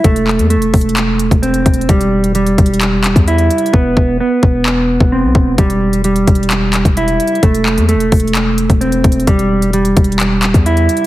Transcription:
0.04 808-style bass E1, clean electric guitar A3, kick, closed hi-hat
0.16 closed hi-hat
0.27 clap
0.39 808-style bass E2, closed hi-hat
0.50 clean electric guitar A3, closed hi-hat
0.56 808-style bass E1
0.62 closed hi-hat
0.74 808-style bass E1, kick, closed hi-hat, open hi-hat
0.81 closed hi-hat
0.89 closed hi-hat
0.97 clap, closed hi-hat
1.19 closed hi-hat
1.31 808-style bass E1, kick, closed hi-hat
1.42 clean electric guitar C4, closed hi-hat
1.54 closed hi-hat
1.66 808-style bass E1, kick, closed hi-hat
1.74 closed hi-hat
1.81 closed hi-hat
1.89 808-style bass E1, clean electric guitar G3, kick, closed hi-hat
2.01 closed hi-hat
2.24 closed hi-hat
2.35 clean electric guitar G3, closed hi-hat
2.46 closed hi-hat
2.58 808-style bass E1, kick, closed hi-hat
2.66 closed hi-hat
2.74 closed hi-hat
2.81 clap, closed hi-hat
3.04 808-style bass D#1, clap, closed hi-hat
3.16 808-style bass E2, kick, closed hi-hat
3.28 clean electric guitar E4, closed hi-hat
3.38 closed hi-hat
3.50 closed hi-hat
3.58 closed hi-hat
3.66 closed hi-hat
3.73 808-style bass E1, clean electric guitar B3, kick
3.97 808-style bass E1, kick
4.20 clean electric guitar B3
4.43 808-style bass E1, kick
4.66 clap
5.00 808-style bass E1, kick
5.12 clean electric guitar C4
5.24 808-style bass B1
5.35 808-style bass E1, kick
5.58 808-style bass E1, clean electric guitar G3, kick, closed hi-hat
5.70 closed hi-hat
5.93 closed hi-hat
6.04 clean electric guitar G3, closed hi-hat
6.16 closed hi-hat
6.27 808-style bass E1, kick, closed hi-hat
6.35 closed hi-hat
6.43 closed hi-hat
6.51 clap, closed hi-hat
6.73 clap, closed hi-hat
6.85 808-style bass E1, kick, closed hi-hat
6.97 clean electric guitar E4, closed hi-hat
7.08 closed hi-hat
7.20 closed hi-hat
7.27 closed hi-hat
7.35 closed hi-hat
7.43 808-style bass E1, clean electric guitar A3, kick, closed hi-hat
7.54 closed hi-hat
7.66 clap
7.77 808-style bass E2, closed hi-hat
7.89 clean electric guitar A3, closed hi-hat
7.95 808-style bass E1
8.00 closed hi-hat
8.12 808-style bass E1, kick, closed hi-hat, open hi-hat
8.20 closed hi-hat
8.27 closed hi-hat
8.35 clap, closed hi-hat
8.58 closed hi-hat
8.70 808-style bass E1, kick, closed hi-hat
8.81 clean electric guitar C4, closed hi-hat
8.92 closed hi-hat
9.04 808-style bass E1, kick, closed hi-hat
9.12 closed hi-hat
9.20 closed hi-hat
9.27 808-style bass E1, clean electric guitar G3, kick, closed hi-hat
9.39 closed hi-hat
9.62 closed hi-hat
9.73 clean electric guitar G3, closed hi-hat
9.85 closed hi-hat
9.97 808-style bass E1, kick, closed hi-hat
10.04 closed hi-hat
10.12 closed hi-hat
10.20 clap, closed hi-hat
10.42 808-style bass D#1, clap, closed hi-hat
10.54 808-style bass E2, kick, closed hi-hat
10.66 clean electric guitar E4, closed hi-hat
10.77 closed hi-hat
10.89 closed hi-hat
10.97 closed hi-hat

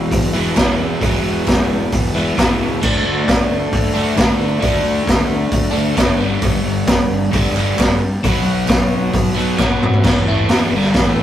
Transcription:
Already playing: overdriven electric guitar E2 B2 E3
0.10 fingered electric bass E1, kick, open hi-hat
0.32 fingered electric bass E1, overdriven electric guitar B2 E3, clap
0.37 overdriven electric guitar E2
0.56 fingered electric bass E1, overdriven electric guitar E2 B2 E3, kick, snare, clap, open hi-hat
0.77 fingered electric bass E2
1.00 fingered electric bass E1, overdriven electric guitar E2 B2 E3, kick, open hi-hat
1.24 fingered electric bass E1
1.47 fingered electric bass E1, kick, snare, clap, open hi-hat
1.68 fingered electric bass E1
1.92 fingered electric bass E1, kick, open hi-hat
2.14 fingered electric bass E1, overdriven electric guitar E2 B2 E3, clap
2.35 fingered electric bass E1, overdriven electric guitar E2 B2 E3, kick, snare, open hi-hat
2.40 clap
2.59 fingered electric bass C#2
2.82 fingered electric bass D2, overdriven electric guitar D3 A3 D4, kick, crash
3.05 fingered electric bass D2
3.28 fingered electric bass D2, kick, snare, clap, open hi-hat
3.49 fingered electric bass D2
3.72 fingered electric bass D2, kick, open hi-hat
3.93 fingered electric bass D2, overdriven electric guitar A3 D4
3.98 overdriven electric guitar D3
4.16 fingered electric bass D2, overdriven electric guitar D3 A3 D4, kick, snare, clap, open hi-hat
4.39 fingered electric bass D3
4.60 fingered electric bass D2, overdriven electric guitar D3 A3 D4, kick, open hi-hat
4.83 fingered electric bass D2
5.06 fingered electric bass D2, kick, snare, open hi-hat
5.10 clap
5.28 fingered electric bass D2
5.51 fingered electric bass D2, kick, open hi-hat
5.71 fingered electric bass D2, overdriven electric guitar A3 D4
5.75 overdriven electric guitar D3, clap
5.95 fingered electric bass F#1, overdriven electric guitar D3 A3 D4, kick, snare, clap, open hi-hat
6.16 fingered electric bass G1, overdriven electric guitar G2 D3
6.21 overdriven electric guitar G3
6.41 fingered electric bass G1, kick, open hi-hat
6.63 fingered electric bass G1
6.86 fingered electric bass G1, kick, snare, clap, open hi-hat
7.10 fingered electric bass G1
7.32 fingered electric bass G1, overdriven electric guitar G2 D3 G3, kick, open hi-hat
7.53 fingered electric bass G1, overdriven electric guitar G3, clap
7.58 overdriven electric guitar G2 D3
7.78 fingered electric bass G1, kick, snare, clap, open hi-hat
7.97 fingered electric bass G2
8.23 fingered electric bass B1, overdriven electric guitar B2 F#3, kick, open hi-hat
8.28 overdriven electric guitar B3
8.45 fingered electric bass B1
8.68 fingered electric bass B1, kick, snare, clap, open hi-hat
8.91 fingered electric bass B1
9.12 fingered electric bass B1, kick, open hi-hat
9.33 fingered electric bass B1, overdriven electric guitar F#3 B3
9.38 overdriven electric guitar B2, clap
9.57 fingered electric bass B1, overdriven electric guitar B2 F#3 B3, kick, snare, clap
9.79 fingered electric bass B2, mid tom
9.94 floor tom
10.04 fingered electric bass E1, overdriven electric guitar E2 B2 E3, kick, snare, crash
10.24 fingered electric bass A1, overdriven electric guitar A2 E3 A3
10.48 fingered electric bass E1, overdriven electric guitar E2 B2 E3, snare, open hi-hat
10.71 fingered electric bass G1
10.76 overdriven electric guitar G2 D3 G3
10.94 fingered electric bass A1, overdriven electric guitar A2 E3 A3, kick, snare, open hi-hat

